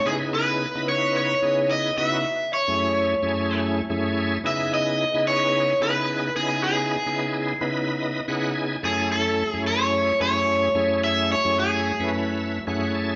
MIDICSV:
0, 0, Header, 1, 3, 480
1, 0, Start_track
1, 0, Key_signature, 4, "minor"
1, 0, Tempo, 548446
1, 49, Time_signature, 4, 2, 24, 8
1, 11513, End_track
2, 0, Start_track
2, 0, Title_t, "Overdriven electric guitar"
2, 0, Program_c, 0, 29
2, 56, Note_on_c, 0, 68, 85
2, 120, Note_off_c, 0, 68, 0
2, 301, Note_on_c, 0, 71, 88
2, 773, Note_off_c, 0, 71, 0
2, 777, Note_on_c, 0, 73, 91
2, 1010, Note_off_c, 0, 73, 0
2, 1021, Note_on_c, 0, 73, 88
2, 1494, Note_on_c, 0, 75, 90
2, 1508, Note_off_c, 0, 73, 0
2, 1714, Note_off_c, 0, 75, 0
2, 1733, Note_on_c, 0, 76, 103
2, 2215, Note_off_c, 0, 76, 0
2, 2219, Note_on_c, 0, 73, 86
2, 3138, Note_off_c, 0, 73, 0
2, 3910, Note_on_c, 0, 76, 107
2, 4144, Note_off_c, 0, 76, 0
2, 4148, Note_on_c, 0, 75, 106
2, 4614, Note_off_c, 0, 75, 0
2, 4617, Note_on_c, 0, 73, 104
2, 5101, Note_on_c, 0, 71, 89
2, 5106, Note_off_c, 0, 73, 0
2, 5541, Note_off_c, 0, 71, 0
2, 5570, Note_on_c, 0, 68, 83
2, 5799, Note_off_c, 0, 68, 0
2, 5809, Note_on_c, 0, 68, 76
2, 6733, Note_off_c, 0, 68, 0
2, 7747, Note_on_c, 0, 68, 82
2, 7978, Note_off_c, 0, 68, 0
2, 7982, Note_on_c, 0, 69, 81
2, 8306, Note_off_c, 0, 69, 0
2, 8306, Note_on_c, 0, 68, 81
2, 8421, Note_off_c, 0, 68, 0
2, 8466, Note_on_c, 0, 73, 92
2, 8930, Note_off_c, 0, 73, 0
2, 8941, Note_on_c, 0, 73, 93
2, 9658, Note_off_c, 0, 73, 0
2, 9662, Note_on_c, 0, 76, 109
2, 9902, Note_off_c, 0, 76, 0
2, 9910, Note_on_c, 0, 73, 88
2, 10123, Note_off_c, 0, 73, 0
2, 10146, Note_on_c, 0, 68, 84
2, 10585, Note_off_c, 0, 68, 0
2, 11513, End_track
3, 0, Start_track
3, 0, Title_t, "Tonewheel organ"
3, 0, Program_c, 1, 16
3, 47, Note_on_c, 1, 49, 67
3, 48, Note_on_c, 1, 59, 62
3, 51, Note_on_c, 1, 63, 60
3, 51, Note_on_c, 1, 64, 66
3, 53, Note_on_c, 1, 68, 76
3, 576, Note_off_c, 1, 49, 0
3, 577, Note_off_c, 1, 59, 0
3, 578, Note_off_c, 1, 63, 0
3, 578, Note_off_c, 1, 64, 0
3, 579, Note_off_c, 1, 68, 0
3, 656, Note_on_c, 1, 49, 66
3, 657, Note_on_c, 1, 59, 64
3, 659, Note_on_c, 1, 63, 60
3, 659, Note_on_c, 1, 64, 65
3, 660, Note_on_c, 1, 71, 73
3, 1178, Note_off_c, 1, 49, 0
3, 1178, Note_off_c, 1, 59, 0
3, 1179, Note_off_c, 1, 63, 0
3, 1179, Note_off_c, 1, 64, 0
3, 1180, Note_off_c, 1, 71, 0
3, 1243, Note_on_c, 1, 49, 63
3, 1245, Note_on_c, 1, 59, 61
3, 1246, Note_on_c, 1, 63, 58
3, 1249, Note_on_c, 1, 68, 73
3, 1250, Note_on_c, 1, 64, 58
3, 1672, Note_off_c, 1, 49, 0
3, 1672, Note_off_c, 1, 59, 0
3, 1673, Note_off_c, 1, 63, 0
3, 1675, Note_off_c, 1, 64, 0
3, 1675, Note_off_c, 1, 68, 0
3, 1725, Note_on_c, 1, 49, 70
3, 1726, Note_on_c, 1, 59, 66
3, 1730, Note_on_c, 1, 63, 67
3, 1731, Note_on_c, 1, 66, 75
3, 1733, Note_on_c, 1, 64, 70
3, 1966, Note_off_c, 1, 49, 0
3, 1967, Note_off_c, 1, 59, 0
3, 1969, Note_off_c, 1, 63, 0
3, 1969, Note_off_c, 1, 66, 0
3, 1970, Note_off_c, 1, 64, 0
3, 2340, Note_on_c, 1, 57, 64
3, 2341, Note_on_c, 1, 42, 67
3, 2341, Note_on_c, 1, 61, 61
3, 2344, Note_on_c, 1, 64, 65
3, 2346, Note_on_c, 1, 68, 76
3, 2753, Note_off_c, 1, 42, 0
3, 2753, Note_off_c, 1, 57, 0
3, 2753, Note_off_c, 1, 61, 0
3, 2755, Note_off_c, 1, 64, 0
3, 2756, Note_off_c, 1, 68, 0
3, 2820, Note_on_c, 1, 42, 76
3, 2821, Note_on_c, 1, 57, 70
3, 2822, Note_on_c, 1, 61, 77
3, 2824, Note_on_c, 1, 64, 71
3, 2825, Note_on_c, 1, 68, 95
3, 3340, Note_off_c, 1, 42, 0
3, 3340, Note_off_c, 1, 57, 0
3, 3340, Note_off_c, 1, 61, 0
3, 3342, Note_off_c, 1, 64, 0
3, 3342, Note_off_c, 1, 68, 0
3, 3409, Note_on_c, 1, 42, 89
3, 3410, Note_on_c, 1, 57, 82
3, 3412, Note_on_c, 1, 61, 80
3, 3413, Note_on_c, 1, 64, 84
3, 3415, Note_on_c, 1, 68, 105
3, 3834, Note_off_c, 1, 42, 0
3, 3835, Note_off_c, 1, 57, 0
3, 3836, Note_off_c, 1, 61, 0
3, 3836, Note_off_c, 1, 64, 0
3, 3837, Note_off_c, 1, 68, 0
3, 3885, Note_on_c, 1, 49, 69
3, 3885, Note_on_c, 1, 59, 65
3, 3886, Note_on_c, 1, 63, 69
3, 3890, Note_on_c, 1, 64, 65
3, 3891, Note_on_c, 1, 68, 72
3, 4415, Note_off_c, 1, 49, 0
3, 4415, Note_off_c, 1, 59, 0
3, 4415, Note_off_c, 1, 63, 0
3, 4417, Note_off_c, 1, 64, 0
3, 4418, Note_off_c, 1, 68, 0
3, 4497, Note_on_c, 1, 49, 69
3, 4501, Note_on_c, 1, 59, 64
3, 4501, Note_on_c, 1, 63, 59
3, 4502, Note_on_c, 1, 64, 63
3, 4504, Note_on_c, 1, 68, 80
3, 5018, Note_off_c, 1, 49, 0
3, 5020, Note_off_c, 1, 59, 0
3, 5020, Note_off_c, 1, 63, 0
3, 5020, Note_off_c, 1, 64, 0
3, 5021, Note_off_c, 1, 68, 0
3, 5079, Note_on_c, 1, 49, 69
3, 5081, Note_on_c, 1, 59, 62
3, 5084, Note_on_c, 1, 63, 61
3, 5085, Note_on_c, 1, 64, 61
3, 5087, Note_on_c, 1, 68, 69
3, 5509, Note_off_c, 1, 49, 0
3, 5510, Note_off_c, 1, 59, 0
3, 5511, Note_off_c, 1, 63, 0
3, 5512, Note_off_c, 1, 64, 0
3, 5513, Note_off_c, 1, 68, 0
3, 5565, Note_on_c, 1, 49, 71
3, 5565, Note_on_c, 1, 59, 70
3, 5568, Note_on_c, 1, 63, 72
3, 5569, Note_on_c, 1, 64, 68
3, 5570, Note_on_c, 1, 68, 76
3, 6094, Note_off_c, 1, 49, 0
3, 6094, Note_off_c, 1, 59, 0
3, 6096, Note_off_c, 1, 63, 0
3, 6096, Note_off_c, 1, 64, 0
3, 6097, Note_off_c, 1, 68, 0
3, 6178, Note_on_c, 1, 49, 72
3, 6181, Note_on_c, 1, 59, 67
3, 6183, Note_on_c, 1, 63, 63
3, 6184, Note_on_c, 1, 64, 61
3, 6186, Note_on_c, 1, 68, 73
3, 6591, Note_off_c, 1, 49, 0
3, 6593, Note_off_c, 1, 59, 0
3, 6593, Note_off_c, 1, 63, 0
3, 6594, Note_off_c, 1, 64, 0
3, 6595, Note_off_c, 1, 68, 0
3, 6657, Note_on_c, 1, 49, 78
3, 6660, Note_on_c, 1, 59, 72
3, 6660, Note_on_c, 1, 64, 78
3, 6662, Note_on_c, 1, 63, 75
3, 6663, Note_on_c, 1, 71, 90
3, 7003, Note_on_c, 1, 75, 60
3, 7177, Note_off_c, 1, 49, 0
3, 7179, Note_off_c, 1, 59, 0
3, 7179, Note_off_c, 1, 64, 0
3, 7180, Note_off_c, 1, 63, 0
3, 7180, Note_off_c, 1, 71, 0
3, 7228, Note_off_c, 1, 75, 0
3, 7244, Note_on_c, 1, 49, 97
3, 7245, Note_on_c, 1, 59, 80
3, 7246, Note_on_c, 1, 63, 75
3, 7247, Note_on_c, 1, 64, 81
3, 7247, Note_on_c, 1, 78, 65
3, 7252, Note_on_c, 1, 68, 101
3, 7470, Note_off_c, 1, 78, 0
3, 7487, Note_on_c, 1, 80, 64
3, 7671, Note_off_c, 1, 49, 0
3, 7672, Note_off_c, 1, 59, 0
3, 7672, Note_off_c, 1, 63, 0
3, 7673, Note_off_c, 1, 64, 0
3, 7675, Note_off_c, 1, 68, 0
3, 7710, Note_off_c, 1, 80, 0
3, 7725, Note_on_c, 1, 42, 70
3, 7728, Note_on_c, 1, 57, 61
3, 7729, Note_on_c, 1, 61, 63
3, 7731, Note_on_c, 1, 64, 63
3, 7732, Note_on_c, 1, 69, 73
3, 8255, Note_off_c, 1, 42, 0
3, 8256, Note_off_c, 1, 57, 0
3, 8256, Note_off_c, 1, 61, 0
3, 8258, Note_off_c, 1, 64, 0
3, 8258, Note_off_c, 1, 69, 0
3, 8341, Note_on_c, 1, 42, 72
3, 8342, Note_on_c, 1, 57, 60
3, 8345, Note_on_c, 1, 61, 66
3, 8347, Note_on_c, 1, 64, 65
3, 8349, Note_on_c, 1, 68, 74
3, 8860, Note_off_c, 1, 42, 0
3, 8860, Note_off_c, 1, 57, 0
3, 8862, Note_off_c, 1, 61, 0
3, 8862, Note_off_c, 1, 64, 0
3, 8864, Note_off_c, 1, 68, 0
3, 8926, Note_on_c, 1, 42, 65
3, 8927, Note_on_c, 1, 61, 62
3, 8929, Note_on_c, 1, 57, 59
3, 8933, Note_on_c, 1, 64, 65
3, 8934, Note_on_c, 1, 68, 75
3, 9353, Note_off_c, 1, 42, 0
3, 9353, Note_off_c, 1, 61, 0
3, 9354, Note_off_c, 1, 57, 0
3, 9356, Note_off_c, 1, 64, 0
3, 9356, Note_off_c, 1, 68, 0
3, 9404, Note_on_c, 1, 42, 79
3, 9405, Note_on_c, 1, 61, 69
3, 9406, Note_on_c, 1, 57, 64
3, 9407, Note_on_c, 1, 64, 70
3, 9410, Note_on_c, 1, 68, 82
3, 9935, Note_off_c, 1, 42, 0
3, 9936, Note_off_c, 1, 57, 0
3, 9936, Note_off_c, 1, 61, 0
3, 9936, Note_off_c, 1, 64, 0
3, 9938, Note_off_c, 1, 68, 0
3, 10019, Note_on_c, 1, 42, 68
3, 10021, Note_on_c, 1, 57, 65
3, 10024, Note_on_c, 1, 61, 68
3, 10025, Note_on_c, 1, 64, 64
3, 10028, Note_on_c, 1, 68, 81
3, 10433, Note_off_c, 1, 42, 0
3, 10434, Note_off_c, 1, 57, 0
3, 10435, Note_off_c, 1, 61, 0
3, 10436, Note_off_c, 1, 64, 0
3, 10437, Note_off_c, 1, 68, 0
3, 10495, Note_on_c, 1, 42, 67
3, 10498, Note_on_c, 1, 57, 63
3, 10501, Note_on_c, 1, 61, 65
3, 10503, Note_on_c, 1, 64, 64
3, 10505, Note_on_c, 1, 71, 78
3, 10848, Note_on_c, 1, 76, 69
3, 11018, Note_off_c, 1, 42, 0
3, 11019, Note_off_c, 1, 57, 0
3, 11021, Note_off_c, 1, 61, 0
3, 11022, Note_off_c, 1, 64, 0
3, 11023, Note_off_c, 1, 71, 0
3, 11072, Note_off_c, 1, 76, 0
3, 11085, Note_on_c, 1, 42, 94
3, 11087, Note_on_c, 1, 57, 88
3, 11088, Note_on_c, 1, 61, 82
3, 11088, Note_on_c, 1, 78, 66
3, 11089, Note_on_c, 1, 64, 89
3, 11091, Note_on_c, 1, 68, 107
3, 11312, Note_off_c, 1, 78, 0
3, 11333, Note_on_c, 1, 81, 65
3, 11513, Note_off_c, 1, 42, 0
3, 11513, Note_off_c, 1, 57, 0
3, 11513, Note_off_c, 1, 61, 0
3, 11513, Note_off_c, 1, 64, 0
3, 11513, Note_off_c, 1, 68, 0
3, 11513, Note_off_c, 1, 81, 0
3, 11513, End_track
0, 0, End_of_file